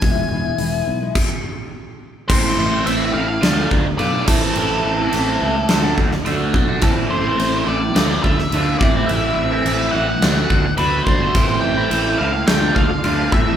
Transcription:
<<
  \new Staff \with { instrumentName = "Lead electric guitar" } { \time 4/4 \key a \minor \tempo 4 = 106 gis''2. r4 | c''4 e''8 f''4 r8 d''8 a'8~ | a'2~ a'8 r4. | a'8 c''4 d''4 e''4 d''8 |
e''8 e''4 fis''4. b'8 c''8~ | c''8 g''4 f''8 g''8 f''4 e''8 | }
  \new Staff \with { instrumentName = "String section" } { \time 4/4 \key a \minor << { r1 | r1 | r1 | r1 |
r1 | <a' a''>1 | } \\ { r1 | r1 | r1 | r1 |
r1 | r2 <f' d''>4. <e' c''>8 | } >> }
  \new Staff \with { instrumentName = "Overdriven electric guitar" } { \time 4/4 \key a \minor r1 | <a, e a c' e'>8. <a c' e'>16 <a, e a c' e'>8 <e a c' e'>8 <d a d' f'>16 <a d' f'>8. <d a d' f'>8 <a, e a c' e'>16 <a c' e'>16 | <a, e a c' e'>8. <a c' e'>16 <a, e a c' e'>8 <e a c' e'>8 <d a d' fis'>16 <a d' fis'>8. <d a d' fis'>8 <d a d' fis'>16 <a d' fis'>16 | <a, e a c' e'>8. <a c' e'>16 <a, e a c' e'>8 <e a c' e'>8 <d a d' f'>16 <a d' f'>8. <d a d' f'>8 <a, e a c' e'>16 <a c' e'>16 |
<a, e a c' e'>8. <a c' e'>16 <a, e a c' e'>8 <e a c' e'>8 <d a d' fis'>16 <a d' fis'>8. <d a d' fis'>8 <d a d' fis'>16 <a d' fis'>16 | <a, e a c' e'>8. <a c' e'>16 <a, e a c' e'>8 <e a c' e'>8 <d a d' f'>16 <a d' f'>8. <d a d' f'>8 <a, e a c' e'>16 <a c' e'>16 | }
  \new Staff \with { instrumentName = "Steel-string acoustic guitar" } { \time 4/4 \key a \minor <e gis b e'>16 <gis b e'>16 <e gis b e'>8 <e gis b e'>8. <gis b e'>16 r2 | r1 | r1 | r1 |
r1 | r1 | }
  \new Staff \with { instrumentName = "Fretless electric bass" } { \clef bass \time 4/4 \key a \minor e,,8 e,,8 e,,8 b,,8 r2 | a,,8 a,,8 a,,8 a,,8 d,8 d,8 b,,8 a,,8 | a,,8 a,,8 a,,8 cis,8 d,8 d,8 d,8 b,,8 | a,,8 a,,8 a,,8 a,,8 d,8 d,8 d,8 a,,8 |
a,,8 a,,8 a,,8 a,,8 d,8 d,8 d,8 g,,8 | a,,8 a,,8 a,,8 cis,8 d,8 d,8 d,8 a,,8 | }
  \new DrumStaff \with { instrumentName = "Drums" } \drummode { \time 4/4 <hho bd>4 hho4 <cymc bd>4 r4 | <cymc bd>4 cymc4 <cymc sn>8 bd8 cymc8 <cymc bd>8 | cymc4 cymc4 <cymc sn>8 bd16 sn16 cymc8 bd8 | <cymc bd>4 cymc4 <cymc sn>8 bd16 sn16 cymc8 bd8 |
cymc4 cymc4 <cymc sn>8 bd8 cymc8 bd8 | <cymc bd>4 cymc4 <cymc sn>8 bd8 cymc8 bd8 | }
>>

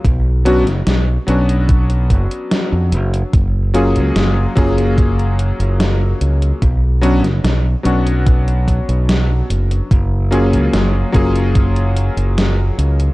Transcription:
<<
  \new Staff \with { instrumentName = "Electric grand piano" } { \time 4/4 \key fis \major \tempo 4 = 73 r8 <fis b cis' d' fis'>8 r8 <fis b cis' d' fis'>2~ <fis b cis' d' fis'>8 | r8 <fis ais cis' eis' gis'>4 <fis ais cis' eis' gis'>2~ <fis ais cis' eis' gis'>8 | r8 <fis b cis' d' fis'>8 r8 <fis b cis' d' fis'>2~ <fis b cis' d' fis'>8 | r8 <fis ais cis' eis' gis'>4 <fis ais cis' eis' gis'>2~ <fis ais cis' eis' gis'>8 | }
  \new Staff \with { instrumentName = "Fingered electric bass" } { \clef bass \time 4/4 \key fis \major b,,8. fis,,16 b,,16 r16 b,,4 fis,,16 r8 eis,16 fis,,16 r16 | fis,,8. cis,16 fis,,16 r16 fis,,4~ fis,,16 fis,,8. cis,16 r16 | b,,8. fis,,16 b,,16 r16 b,,4~ b,,16 b,,8. fis,,16 r16 | fis,,8. cis,16 fis,,16 r16 fis,,4~ fis,,16 fis,,8. cis,16 r16 | }
  \new DrumStaff \with { instrumentName = "Drums" } \drummode { \time 4/4 <hh bd>8 hh16 <hh sn>16 <hh sn>8 hh16 hh16 <hh bd>16 hh16 <hh bd>16 hh16 <hh sn>8 hh16 hh16 | <hh bd>8 hh16 hh16 <hh sn>8 <hh bd>16 hh16 <hh bd>16 hh16 hh16 hh16 <hh sn>8 hh16 hh16 | <hh bd>8 hh16 <hh sn>16 <hh sn>8 hh16 hh16 <hh bd>16 hh16 <hh bd>16 hh16 <hh sn>8 hh16 hh16 | <hh bd>8 hh16 hh16 <hh sn>8 <hh bd>16 hh16 <hh bd>16 hh16 hh16 hh16 <hh sn>8 hh16 hh16 | }
>>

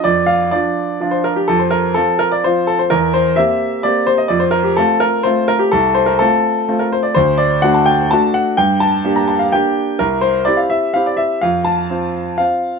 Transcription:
\new Staff \with { instrumentName = "Grand piano" } { \time 3/4 \key f \mixolydian \tempo 4 = 126 << { d''8 f''8 d''4~ d''16 c''16 bes'16 g'16 | a'16 c''16 bes'8 a'8 bes'16 d''16 c''8 a'16 c''16 | bes'8 c''8 e''4 d''8 c''16 ees''16 | d''16 c''16 bes'16 g'16 a'8 bes'8 c''8 bes'16 g'16 |
a'8 c''16 bes'16 a'4~ a'16 bes'16 c''16 d''16 | c''8 d''8 fis''16 a''16 g''8 a''8 fis''8 | g''8 a''8. bes''16 a''16 f''16 g''4 | bes'8 c''8 d''16 f''16 e''8 f''16 d''16 e''8 |
f''8 a''4. f''4 | } \\ { f,4 <f d' f'>4 <f d' f'>4 | f,4 <f c' f'>4 <f c' f'>4 | e,4 <bes c' g'>4 <bes c' g'>4 | f,4 <a c' f'>4 <a c' f'>4 |
c,4 <a c' f'>4 <a c' f'>4 | d,4 <a d' fis'>4 <a d' fis'>4 | g,4 <bes d' g'>4 <bes d' g'>4 | c,4 <c' e' g'>4 <c' e' g'>4 |
f,4 <c' f'>4 <c' f'>4 | } >> }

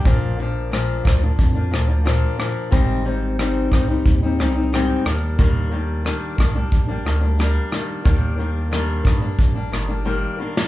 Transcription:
<<
  \new Staff \with { instrumentName = "Steel-string acoustic guitar" } { \time 4/4 \key ees \major \tempo 4 = 90 <bes, f bes d'>8 <bes, f bes d'>8 <bes, f bes d'>8 <bes, f bes d'>16 <f bes d'>8 <f bes d'>16 <bes, f bes d'>16 <f bes d'>16 <bes, f bes d'>8 <bes, f bes d'>8 | <aes, g c' ees'>8 <aes, g c' ees'>8 <aes, g c' ees'>8 <aes, g c' ees'>16 <g c' ees'>8 <g c' ees'>16 <aes, g c' ees'>16 <g c' ees'>16 <aes, g c' ees'>8 <ees g bes d'>8 | <ees g bes d'>8 <ees g bes d'>8 <ees g bes d'>8 <ees g bes d'>16 <g bes d'>8 <g bes d'>16 <ees g bes d'>16 <g bes d'>16 <g bes d'>8 <ees g bes d'>8 | <ees g bes d'>8 <ees g bes d'>8 <ees g bes d'>8 <ees g bes d'>16 <g bes d'>8 <g bes d'>16 <ees g bes d'>16 <g bes d'>16 <ees g bes d'>8 <ees g bes d'>8 | }
  \new Staff \with { instrumentName = "Analog synth bass" } { \clef bass \time 4/4 \key ees \major bes,,4. d,8 f,8 d,4 r8 | aes,,4. c,8 ees,8 c,4 ees,8~ | ees,4. c,8 bes,,8 d,4 r8 | ees,4. g,8 bes,,8 g,,4 r8 | }
  \new DrumStaff \with { instrumentName = "Drums" } \drummode { \time 4/4 <hh bd>8 hh8 <hh ss>8 <hh bd ss>8 <hh bd>8 <hh ss>8 <hh ss>8 <hh ss>8 | <hh bd>8 hh8 <hh ss>8 <hh bd ss>8 <hh bd>8 <hh ss>8 <hh ss>8 <hh ss>8 | <hh bd>8 hh8 <hh ss>8 <hh bd ss>8 <hh bd>8 <hh ss>8 <hh ss>8 <hh ss>8 | <hh bd>8 hh8 <hh ss>8 <hh bd ss>8 <hh bd>8 <hh ss>8 r8. sn16 | }
>>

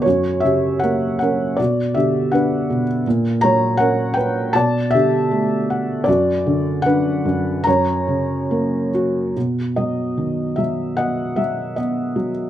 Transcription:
<<
  \new Staff \with { instrumentName = "Felt piano" } { \time 4/4 \key b \minor \tempo 4 = 77 << { cis''8 e''8 fis''8 fis''8 d''8 e''8 fis''8. r16 | r8 ais''8 fis''8 g''8 a''8 e''4. | d''4 fis''4 ais''4. r8 | \key b \major r8 dis''4 e''8 fis''8 e''8 dis''8. r16 | } \\ { fis'8 g'8 ais'8 ais'8 fis'8 g'8 b'8. r16 | r8 cis''8 ais'8 b'8 d''8 g'4. | fis'4 b'4 cis''4. r8 | r2 dis''2 | } >> }
  \new Staff \with { instrumentName = "Felt piano" } { \clef bass \time 4/4 \key b \minor fis,8 cis8 ais8 cis'8 b,8 d8 d'8 b,8 | ais,8 fis8 cis'4 b,8 d8 a8 fis''8 | fis,8 d8 d'8 fis,8 fis,8 cis8 ais8 fis'8 | \key b \major b,8 fis8 dis8 fis8 b8 fis8 b8 fis8 | }
>>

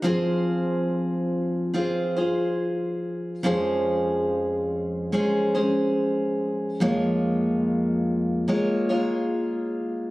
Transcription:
\new Staff \with { instrumentName = "Steel-string acoustic guitar" } { \time 4/4 \key des \major \tempo 4 = 71 <f c' f' aes' c''>2 <c' f' aes' c''>8 <f' aes' c''>4. | <f, f aes des' aes' c''>2 <aes des' aes' c''>8 <aes des' aes' c''>4. | <f, f aes bes f' des''>2 <aes bes f' des''>8 <aes bes f' des''>4. | }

